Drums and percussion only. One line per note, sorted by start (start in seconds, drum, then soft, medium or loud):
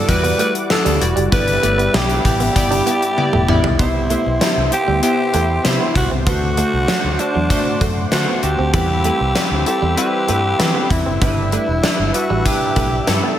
0.09 kick medium
0.09 closed hi-hat loud
0.24 closed hi-hat medium
0.39 closed hi-hat medium
0.55 closed hi-hat medium
0.70 snare loud
0.70 tambourine medium
0.86 closed hi-hat medium
1.02 closed hi-hat medium
1.17 closed hi-hat medium
1.32 kick loud
1.32 closed hi-hat loud
1.48 closed hi-hat soft
1.63 closed hi-hat medium
1.79 closed hi-hat soft
1.94 snare loud
1.94 tambourine medium
2.10 closed hi-hat medium
2.25 kick medium
2.25 closed hi-hat medium
2.40 closed hi-hat medium
2.56 kick medium
2.56 closed hi-hat loud
2.72 closed hi-hat medium
2.87 closed hi-hat medium
3.02 closed hi-hat medium
3.18 high tom medium
3.33 mid tom medium
3.48 mid tom medium
3.64 floor tom medium
3.79 kick loud
3.79 closed hi-hat medium
4.10 closed hi-hat medium
4.41 snare medium
4.41 closed hi-hat medium
4.72 closed hi-hat medium
5.03 closed hi-hat medium
5.34 closed hi-hat medium
5.65 snare medium
5.65 closed hi-hat medium
5.95 kick medium
5.95 closed hi-hat medium
6.27 kick loud
6.27 closed hi-hat medium
6.57 closed hi-hat medium
6.88 snare loud
6.88 closed hi-hat medium
7.19 closed hi-hat medium
7.50 kick medium
7.50 closed hi-hat medium
7.81 kick medium
7.81 closed hi-hat medium
8.12 snare medium
8.12 closed hi-hat medium
8.43 closed hi-hat medium
8.74 kick loud
8.74 closed hi-hat medium
9.04 closed hi-hat medium
9.36 snare loud
9.36 closed hi-hat medium
9.66 closed hi-hat medium
9.97 closed hi-hat medium
10.28 closed hi-hat medium
10.60 snare medium
10.60 closed hi-hat medium
10.90 kick medium
10.90 closed hi-hat medium
11.22 kick loud
11.22 closed hi-hat medium
11.52 closed hi-hat medium
11.84 snare loud
11.84 closed hi-hat medium
12.14 closed hi-hat medium
12.46 kick medium
12.46 closed hi-hat medium
12.76 kick medium
12.76 closed hi-hat medium
13.07 snare medium
13.07 closed hi-hat medium